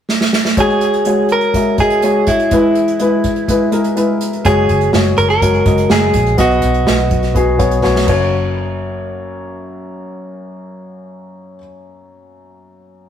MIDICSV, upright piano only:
0, 0, Header, 1, 2, 480
1, 0, Start_track
1, 0, Tempo, 483871
1, 569, Time_signature, 4, 2, 24, 8
1, 12986, End_track
2, 0, Start_track
2, 0, Title_t, "Upright piano"
2, 0, Program_c, 0, 0
2, 566, Note_on_c, 0, 56, 81
2, 571, Note_on_c, 0, 66, 72
2, 576, Note_on_c, 0, 73, 86
2, 745, Control_c, 0, 64, 127
2, 995, Note_off_c, 0, 56, 0
2, 998, Note_off_c, 0, 66, 0
2, 1001, Note_off_c, 0, 73, 0
2, 1048, Note_on_c, 0, 56, 61
2, 1054, Note_on_c, 0, 66, 59
2, 1062, Note_on_c, 0, 73, 65
2, 1477, Note_off_c, 0, 56, 0
2, 1480, Note_off_c, 0, 66, 0
2, 1484, Note_off_c, 0, 73, 0
2, 1526, Note_on_c, 0, 56, 58
2, 1534, Note_on_c, 0, 66, 50
2, 1537, Note_on_c, 0, 76, 63
2, 1743, Note_off_c, 0, 56, 0
2, 1747, Note_off_c, 0, 66, 0
2, 1748, Note_off_c, 0, 76, 0
2, 1763, Note_on_c, 0, 56, 51
2, 1772, Note_on_c, 0, 66, 50
2, 1779, Note_on_c, 0, 75, 66
2, 1981, Note_off_c, 0, 56, 0
2, 1986, Note_off_c, 0, 66, 0
2, 1989, Note_off_c, 0, 75, 0
2, 2014, Note_on_c, 0, 56, 65
2, 2016, Note_on_c, 0, 66, 52
2, 2023, Note_on_c, 0, 73, 64
2, 2441, Note_off_c, 0, 56, 0
2, 2442, Note_off_c, 0, 66, 0
2, 2445, Note_off_c, 0, 73, 0
2, 2496, Note_on_c, 0, 56, 78
2, 2501, Note_on_c, 0, 52, 55
2, 2503, Note_on_c, 0, 64, 77
2, 2507, Control_c, 0, 64, 0
2, 2508, Note_on_c, 0, 71, 83
2, 2661, Control_c, 0, 64, 127
2, 2922, Note_off_c, 0, 56, 0
2, 2926, Note_off_c, 0, 64, 0
2, 2929, Note_off_c, 0, 71, 0
2, 2973, Note_on_c, 0, 56, 69
2, 2976, Note_on_c, 0, 64, 62
2, 2987, Note_on_c, 0, 71, 85
2, 3179, Note_off_c, 0, 52, 0
2, 3401, Note_off_c, 0, 56, 0
2, 3403, Note_off_c, 0, 64, 0
2, 3408, Note_off_c, 0, 71, 0
2, 3458, Note_on_c, 0, 56, 69
2, 3464, Note_on_c, 0, 64, 59
2, 3469, Note_on_c, 0, 71, 80
2, 3670, Note_off_c, 0, 56, 0
2, 3674, Note_off_c, 0, 64, 0
2, 3676, Note_off_c, 0, 71, 0
2, 3685, Note_on_c, 0, 56, 69
2, 3693, Note_on_c, 0, 64, 57
2, 3696, Note_on_c, 0, 70, 73
2, 3904, Note_off_c, 0, 56, 0
2, 3908, Note_off_c, 0, 64, 0
2, 3910, Note_off_c, 0, 70, 0
2, 3929, Note_on_c, 0, 56, 67
2, 3933, Note_on_c, 0, 64, 64
2, 3940, Note_on_c, 0, 71, 74
2, 4360, Note_off_c, 0, 56, 0
2, 4362, Note_off_c, 0, 64, 0
2, 4365, Note_off_c, 0, 71, 0
2, 4415, Note_on_c, 0, 56, 81
2, 4419, Note_on_c, 0, 66, 69
2, 4427, Note_on_c, 0, 73, 84
2, 4431, Control_c, 0, 64, 0
2, 4604, Control_c, 0, 64, 127
2, 4843, Note_off_c, 0, 56, 0
2, 4845, Note_off_c, 0, 66, 0
2, 4849, Note_off_c, 0, 73, 0
2, 4896, Note_on_c, 0, 56, 66
2, 4904, Note_on_c, 0, 66, 57
2, 4910, Note_on_c, 0, 73, 73
2, 5323, Note_off_c, 0, 56, 0
2, 5328, Note_off_c, 0, 66, 0
2, 5330, Note_off_c, 0, 73, 0
2, 5370, Note_on_c, 0, 56, 59
2, 5378, Note_on_c, 0, 66, 59
2, 5380, Note_on_c, 0, 73, 64
2, 5587, Note_off_c, 0, 56, 0
2, 5591, Note_off_c, 0, 66, 0
2, 5592, Note_off_c, 0, 73, 0
2, 5609, Note_on_c, 0, 56, 55
2, 5618, Note_on_c, 0, 66, 54
2, 5622, Note_on_c, 0, 75, 61
2, 5826, Note_off_c, 0, 56, 0
2, 5831, Note_off_c, 0, 66, 0
2, 5833, Note_off_c, 0, 75, 0
2, 5847, Note_on_c, 0, 56, 60
2, 5855, Note_on_c, 0, 66, 60
2, 5856, Note_on_c, 0, 70, 62
2, 6279, Note_off_c, 0, 56, 0
2, 6283, Note_off_c, 0, 66, 0
2, 6283, Note_off_c, 0, 70, 0
2, 6324, Note_on_c, 0, 59, 80
2, 6326, Note_on_c, 0, 66, 72
2, 6333, Note_on_c, 0, 47, 51
2, 6336, Note_on_c, 0, 75, 97
2, 6352, Control_c, 0, 64, 0
2, 6541, Control_c, 0, 64, 127
2, 6757, Note_off_c, 0, 59, 0
2, 6758, Note_off_c, 0, 66, 0
2, 6763, Note_off_c, 0, 75, 0
2, 6810, Note_on_c, 0, 59, 63
2, 6811, Note_on_c, 0, 66, 60
2, 6822, Note_on_c, 0, 75, 72
2, 7015, Note_off_c, 0, 47, 0
2, 7240, Note_off_c, 0, 59, 0
2, 7240, Note_off_c, 0, 66, 0
2, 7246, Note_off_c, 0, 75, 0
2, 7286, Note_on_c, 0, 59, 72
2, 7295, Note_on_c, 0, 66, 65
2, 7299, Note_on_c, 0, 68, 75
2, 7504, Note_off_c, 0, 59, 0
2, 7509, Note_off_c, 0, 66, 0
2, 7511, Note_off_c, 0, 68, 0
2, 7521, Note_on_c, 0, 59, 72
2, 7529, Note_on_c, 0, 66, 58
2, 7533, Note_on_c, 0, 73, 71
2, 7742, Note_off_c, 0, 59, 0
2, 7745, Note_off_c, 0, 66, 0
2, 7748, Note_off_c, 0, 73, 0
2, 7762, Note_on_c, 0, 59, 70
2, 7767, Note_on_c, 0, 66, 64
2, 7774, Note_on_c, 0, 73, 80
2, 7984, Note_on_c, 0, 58, 70
2, 7989, Note_off_c, 0, 66, 0
2, 8004, Note_on_c, 0, 42, 70
2, 8004, Note_on_c, 0, 66, 67
2, 8008, Note_off_c, 0, 59, 0
2, 8012, Note_off_c, 0, 73, 0
2, 8027, Note_on_c, 0, 73, 87
2, 8030, Control_c, 0, 64, 0
2, 8124, Control_c, 0, 64, 127
2, 8268, Control_c, 0, 64, 0
2, 8443, Control_c, 0, 64, 127
2, 11447, Note_off_c, 0, 58, 0
2, 11467, Note_off_c, 0, 42, 0
2, 11467, Note_off_c, 0, 66, 0
2, 11490, Note_off_c, 0, 73, 0
2, 12986, End_track
0, 0, End_of_file